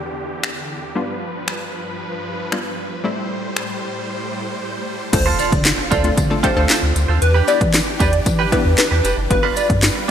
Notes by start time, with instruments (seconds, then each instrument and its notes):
Already playing: supersaw synth E2 D3 G4, synth pluck G3 B3 D4 E4, downlifter
0.43 finger snap
0.95 supersaw synth G2 F3 B4, synth pluck G3 B3 D4 F4
1.48 finger snap
2.52 synth pluck G3 B3 D4 F4, finger snap
3.04 supersaw synth A2 G3 C5, synth pluck G3 A3 C4 E4
3.56 finger snap
5.13 sub bass D2, supersaw synth D3 C4 F4, synth pluck A3 C4 D4 F4 A4, digital synth lead C5, muted clean electric guitar stroke, kick, closed hi-hat, crash, tambourine, impact
5.26 clean electric guitar F4 A4 C5
5.39 clean electric guitar F4 A4 C5, digital synth lead D5, closed hi-hat, tambourine
5.52 sub bass D3, muted clean electric guitar stroke, kick, closed hi-hat
5.65 snare, clap, closed hi-hat, tambourine
5.78 muted clean electric guitar stroke
5.91 sub bass D2, clean electric guitar F4 A4 C5, digital synth lead D5, kick, closed hi-hat, tambourine
6.04 synth pluck A3 C4 D4 F4 A4, muted clean electric guitar stroke, closed hi-hat
6.17 sub bass D3, muted clean electric guitar stroke, kick, closed hi-hat, tambourine
6.30 synth pluck A3 C4 D4 F4 A4, muted clean electric guitar stroke
6.43 synth pluck A3 C4 D4 F4 G4, clean electric guitar F4 A4 C5, digital synth lead C5, kick, closed hi-hat, tambourine
6.56 sub bass D2, synth pluck A3 C4 D4 F4 A4, clean electric guitar F4 A4 C5
6.69 clean electric guitar F4 A4 C5, snare, clap, closed hi-hat, tambourine
6.82 sub bass D2, muted clean electric guitar stroke
6.95 sub bass D2, muted clean electric guitar stroke, closed hi-hat, tambourine
7.08 sub bass D#2, clean electric guitar F4 A4 C5
7.22 sub bass E2, supersaw synth E3 D4 G4, digital synth lead B4, muted clean electric guitar stroke, closed hi-hat
7.34 clean electric guitar D4 G4 B4
7.47 synth pluck B3 D4 E4 G4 B4, clean electric guitar D4 G4 B4, digital synth lead D5, closed hi-hat, tambourine
7.61 sub bass E3, muted clean electric guitar stroke, kick, closed hi-hat
7.74 snare, clap, closed hi-hat, tambourine
7.87 muted clean electric guitar stroke
8.00 sub bass E2, clean electric guitar D4 G4 B4, digital synth lead D5, kick, closed hi-hat, tambourine
8.13 muted clean electric guitar stroke, closed hi-hat
8.26 sub bass E3, muted clean electric guitar stroke, kick, closed hi-hat, tambourine
8.39 clean electric guitar D4 G4 B4
8.52 synth pluck B3 D4 E4 G4 B4, digital synth lead B4, muted clean electric guitar stroke, kick, closed hi-hat
8.65 sub bass E2, muted clean electric guitar stroke
8.78 digital synth lead B4, muted clean electric guitar stroke, snare, clap, closed hi-hat, tambourine
8.91 sub bass E2, clean electric guitar D4 G4 B4
9.04 sub bass F1, clean electric guitar D4 G4 B4, closed hi-hat, tambourine
9.17 sub bass F#1, muted clean electric guitar stroke
9.30 sub bass G1, supersaw synth G3 F4 B4, synth pluck B3 D4 F4 G4 B4, digital synth lead B4, muted clean electric guitar stroke, kick, closed hi-hat
9.43 clean electric guitar D4 F4 B4
9.56 clean electric guitar D4 F4 B4, digital synth lead D5, closed hi-hat, tambourine
9.69 sub bass G2, muted clean electric guitar stroke, kick, closed hi-hat
9.83 snare, clap, closed hi-hat, tambourine
9.95 muted clean electric guitar stroke